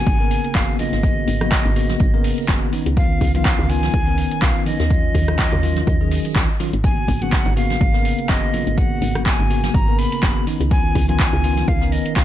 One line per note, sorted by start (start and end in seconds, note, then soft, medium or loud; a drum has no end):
0.00 0.17 C#3 medium
0.00 0.17 A#3 medium
0.00 0.17 B3 medium
0.00 0.17 F#4 medium
0.00 0.57 G#5 loud
0.07 0.39 G#1 loud
0.07 kick loud
0.07 closed hi-hat medium
0.20 0.52 C#3 medium
0.20 0.52 A#3 medium
0.20 0.53 B3 medium
0.20 0.53 A#4 loud
0.31 closed hi-hat medium
0.31 open hi-hat loud
0.44 closed hi-hat medium
0.55 0.65 F#1 loud
0.55 0.77 C#3 medium
0.55 0.77 A#3 medium
0.55 0.77 B3 medium
0.55 0.77 F#4 loud
0.55 0.79 F5 loud
0.55 kick loud
0.55 snare loud
0.55 clap loud
0.55 closed hi-hat medium
0.69 closed hi-hat soft
0.79 1.01 C#3 medium
0.79 1.01 A#3 medium
0.79 1.01 B3 medium
0.79 1.01 F4 medium
0.79 2.69 D#5 medium
0.79 closed hi-hat medium
0.79 open hi-hat medium
0.79 high conga medium
0.93 1.24 G#1 medium
0.93 snare soft
0.93 closed hi-hat medium
1.03 1.38 C#3 medium
1.03 1.38 A#3 medium
1.03 1.38 B3 medium
1.03 1.38 F#4 medium
1.03 kick loud
1.03 closed hi-hat soft
1.03 closed hi-hat medium
1.27 1.60 G#1 loud
1.27 closed hi-hat medium
1.27 open hi-hat loud
1.41 1.73 C#3 medium
1.41 1.73 A#3 medium
1.41 1.73 B3 medium
1.41 1.73 F#4 loud
1.41 cross-stick medium
1.41 closed hi-hat medium
1.41 closed hi-hat soft
1.41 high conga medium
1.52 kick loud
1.52 snare loud
1.52 clap loud
1.52 closed hi-hat soft
1.52 closed hi-hat medium
1.65 1.96 G#1 loud
1.65 low conga medium
1.76 2.10 C#3 medium
1.76 2.10 A#3 medium
1.76 2.11 B3 medium
1.76 2.11 F#4 medium
1.76 closed hi-hat medium
1.76 open hi-hat medium
1.89 snare medium
1.89 closed hi-hat medium
1.89 high conga medium
1.99 2.33 G#1 loud
1.99 kick loud
1.99 closed hi-hat medium
1.99 closed hi-hat soft
2.14 2.46 C#3 medium
2.14 2.46 A#3 medium
2.14 2.46 B3 medium
2.14 2.46 A#4 loud
2.24 open hi-hat medium
2.24 open hi-hat loud
2.38 closed hi-hat medium
2.48 2.59 F#1 medium
2.48 2.70 C#3 medium
2.48 2.70 B3 medium
2.48 2.70 F#4 loud
2.48 kick loud
2.48 snare loud
2.48 clap loud
2.48 closed hi-hat medium
2.48 closed hi-hat soft
2.73 2.94 D#3 medium
2.73 2.94 B3 medium
2.73 2.94 C#4 medium
2.73 2.95 D#4 medium
2.73 closed hi-hat medium
2.73 open hi-hat medium
2.86 3.17 C#2 medium
2.86 closed hi-hat medium
2.97 3.31 D#3 medium
2.97 3.31 B3 medium
2.97 3.31 C#4 medium
2.97 3.31 F4 medium
2.97 3.32 F5 loud
2.97 kick loud
2.97 closed hi-hat medium
2.97 closed hi-hat soft
3.21 3.54 C#2 loud
3.21 kick medium
3.21 closed hi-hat medium
3.21 open hi-hat loud
3.34 3.67 D#3 medium
3.34 3.67 B3 medium
3.34 3.67 C#4 medium
3.34 3.67 F4 loud
3.34 3.71 F5 loud
3.34 closed hi-hat medium
3.34 high conga medium
3.45 kick loud
3.45 snare loud
3.45 clap loud
3.45 closed hi-hat medium
3.45 closed hi-hat soft
3.59 3.90 C#2 loud
3.59 low conga medium
3.69 4.04 D#3 medium
3.69 4.04 B3 medium
3.69 4.04 C#4 medium
3.69 4.04 F4 loud
3.69 4.44 G#5 loud
3.69 closed hi-hat medium
3.69 open hi-hat medium
3.83 snare soft
3.83 closed hi-hat medium
3.83 high conga medium
3.94 4.26 C#2 loud
3.94 kick loud
3.94 closed hi-hat medium
4.07 4.40 D#3 medium
4.07 4.40 B3 medium
4.07 4.40 C#4 medium
4.07 4.40 A#4 loud
4.18 closed hi-hat medium
4.18 open hi-hat loud
4.31 closed hi-hat medium
4.42 4.52 B1 medium
4.42 4.64 F4 loud
4.42 4.66 F5 loud
4.42 kick loud
4.42 snare loud
4.42 clap loud
4.42 closed hi-hat medium
4.56 closed hi-hat soft
4.66 4.88 D#3 medium
4.66 4.88 B3 medium
4.66 4.88 C#4 medium
4.66 4.88 D#4 medium
4.66 6.56 D#5 loud
4.66 closed hi-hat medium
4.66 open hi-hat medium
4.66 high conga medium
4.80 5.11 D#2 medium
4.80 snare soft
4.80 closed hi-hat medium
4.90 5.25 D#3 medium
4.90 5.25 F#3 medium
4.90 5.25 C#4 medium
4.90 5.25 F4 medium
4.90 kick loud
4.90 closed hi-hat soft
4.90 closed hi-hat medium
5.15 5.47 D#2 loud
5.15 kick medium
5.15 closed hi-hat medium
5.15 open hi-hat loud
5.28 5.61 D#3 medium
5.28 5.61 F#3 medium
5.28 5.61 C#4 medium
5.28 5.61 F4 loud
5.28 cross-stick medium
5.28 closed hi-hat soft
5.28 closed hi-hat medium
5.28 high conga medium
5.38 kick loud
5.38 snare loud
5.38 clap loud
5.38 closed hi-hat soft
5.38 closed hi-hat medium
5.52 5.83 D#2 medium
5.52 low conga medium
5.63 5.97 D#3 medium
5.63 5.98 F#3 medium
5.63 5.98 C#4 medium
5.63 5.98 F4 loud
5.63 closed hi-hat medium
5.63 open hi-hat medium
5.76 snare medium
5.76 closed hi-hat medium
5.76 high conga medium
5.87 6.20 D#2 loud
5.87 kick loud
5.87 closed hi-hat medium
5.87 closed hi-hat soft
6.01 6.33 D#3 medium
6.01 6.33 F#3 medium
6.01 6.33 C#4 medium
6.01 6.33 G#4 loud
6.12 open hi-hat loud
6.12 open hi-hat medium
6.25 closed hi-hat medium
6.36 6.46 C#2 loud
6.36 6.48 D#3 medium
6.36 6.48 F#3 medium
6.36 6.48 C#4 medium
6.36 6.48 F4 medium
6.36 kick loud
6.36 snare loud
6.36 clap loud
6.36 closed hi-hat soft
6.60 6.72 D#3 loud
6.60 6.72 F#3 medium
6.60 6.72 C#4 medium
6.60 6.72 F4 loud
6.60 closed hi-hat medium
6.60 open hi-hat medium
6.73 7.04 G#1 medium
6.73 closed hi-hat medium
6.84 7.18 C#3 medium
6.84 7.19 A#3 medium
6.84 7.19 B3 medium
6.84 7.19 F#4 medium
6.84 7.23 G#5 loud
6.84 kick loud
6.84 closed hi-hat medium
6.84 closed hi-hat soft
7.08 7.41 G#1 loud
7.08 kick medium
7.08 closed hi-hat medium
7.08 open hi-hat loud
7.22 7.54 C#3 medium
7.22 7.54 A#3 medium
7.22 7.54 B3 medium
7.22 7.54 F#4 loud
7.22 7.56 F#5 medium
7.22 closed hi-hat medium
7.22 high conga medium
7.32 kick loud
7.32 snare loud
7.32 clap loud
7.32 closed hi-hat soft
7.32 closed hi-hat medium
7.46 7.77 G#1 loud
7.46 low conga medium
7.57 7.91 C#3 medium
7.57 7.91 A#3 medium
7.57 7.91 B3 medium
7.57 7.91 F#4 loud
7.57 8.31 F5 loud
7.57 closed hi-hat medium
7.57 open hi-hat medium
7.70 snare soft
7.70 closed hi-hat medium
7.70 high conga medium
7.81 8.13 G#1 loud
7.81 kick loud
7.81 closed hi-hat loud
7.81 closed hi-hat soft
7.94 8.27 C#3 medium
7.94 8.27 A#3 medium
7.94 8.27 B3 medium
7.94 8.27 A#4 medium
7.94 snare soft
8.05 closed hi-hat medium
8.05 open hi-hat loud
8.19 closed hi-hat medium
8.29 8.40 F#1 loud
8.29 8.51 C#3 medium
8.29 8.51 B3 medium
8.29 8.51 F#4 loud
8.29 8.79 D#5 loud
8.29 kick loud
8.29 snare loud
8.29 clap loud
8.29 closed hi-hat medium
8.29 closed hi-hat soft
8.43 closed hi-hat soft
8.53 8.75 C#3 medium
8.53 8.75 A#3 medium
8.53 8.75 B3 medium
8.53 8.75 F4 medium
8.53 closed hi-hat medium
8.53 open hi-hat medium
8.53 high conga medium
8.67 8.98 G#1 medium
8.67 closed hi-hat medium
8.77 9.12 C#3 medium
8.77 9.12 A#3 medium
8.77 9.12 B3 medium
8.77 9.12 F#4 medium
8.77 9.25 F#5 loud
8.77 kick loud
8.77 closed hi-hat medium
9.01 9.34 G#1 loud
9.01 closed hi-hat medium
9.01 open hi-hat loud
9.15 9.48 C#3 medium
9.15 9.48 A#3 medium
9.15 9.48 B3 medium
9.15 9.48 F#4 loud
9.15 cross-stick medium
9.15 closed hi-hat soft
9.15 closed hi-hat medium
9.15 high conga medium
9.26 9.76 G#5 loud
9.26 kick loud
9.26 snare loud
9.26 clap loud
9.26 closed hi-hat medium
9.39 9.70 G#1 medium
9.39 low conga medium
9.50 9.85 C#3 medium
9.50 9.85 A#3 medium
9.50 9.85 B3 medium
9.50 9.85 F#4 loud
9.50 closed hi-hat medium
9.50 open hi-hat medium
9.63 snare medium
9.63 closed hi-hat medium
9.63 high conga medium
9.74 10.07 G#1 loud
9.74 10.00 A#5 loud
9.74 kick loud
9.74 closed hi-hat medium
9.88 10.20 C#3 medium
9.88 10.20 A#3 medium
9.88 10.20 B3 medium
9.88 10.20 A#4 loud
9.98 10.47 B5 loud
9.98 open hi-hat medium
9.98 open hi-hat loud
10.12 closed hi-hat medium
10.23 10.33 F#1 medium
10.23 10.44 C#3 medium
10.23 10.44 A#3 medium
10.23 10.44 B3 medium
10.23 10.44 F#4 loud
10.23 kick loud
10.23 snare loud
10.23 clap loud
10.23 closed hi-hat soft
10.47 10.69 D#3 medium
10.47 10.69 B3 medium
10.47 10.69 C#4 medium
10.47 10.69 D#4 medium
10.47 closed hi-hat medium
10.47 open hi-hat medium
10.60 10.91 C#2 medium
10.60 closed hi-hat medium
10.71 11.06 D#3 medium
10.71 11.06 B3 medium
10.71 11.06 C#4 medium
10.71 11.06 F4 medium
10.71 11.06 G#5 loud
10.71 kick loud
10.71 closed hi-hat medium
10.71 closed hi-hat loud
10.95 11.28 C#2 loud
10.95 kick medium
10.95 closed hi-hat medium
10.95 open hi-hat loud
11.08 11.41 D#3 medium
11.08 11.41 B3 medium
11.08 11.41 C#4 medium
11.08 11.41 F4 loud
11.08 11.70 G#5 loud
11.08 closed hi-hat medium
11.08 high conga medium
11.20 kick loud
11.20 snare loud
11.20 clap loud
11.20 closed hi-hat medium
11.20 closed hi-hat soft
11.33 11.64 C#2 loud
11.33 low conga medium
11.44 11.78 D#3 medium
11.44 11.78 B3 medium
11.44 11.78 C#4 medium
11.44 11.78 F4 loud
11.44 closed hi-hat medium
11.44 open hi-hat medium
11.57 snare soft
11.57 closed hi-hat medium
11.57 high conga medium
11.68 12.01 C#2 loud
11.68 11.94 F5 loud
11.68 kick loud
11.68 closed hi-hat medium
11.81 12.14 D#3 medium
11.81 12.14 B3 medium
11.81 12.14 C#4 medium
11.81 12.14 A#4 loud
11.81 snare soft
11.92 12.16 D#5 medium
11.92 closed hi-hat medium
11.92 open hi-hat loud
12.06 closed hi-hat medium
12.16 12.24 B1 medium
12.16 12.24 D#3 medium
12.16 12.24 B3 medium
12.16 12.24 C#4 medium
12.16 12.24 F4 loud
12.16 12.24 F5 loud
12.16 kick loud
12.16 snare loud
12.16 clap loud
12.16 closed hi-hat loud
12.16 closed hi-hat medium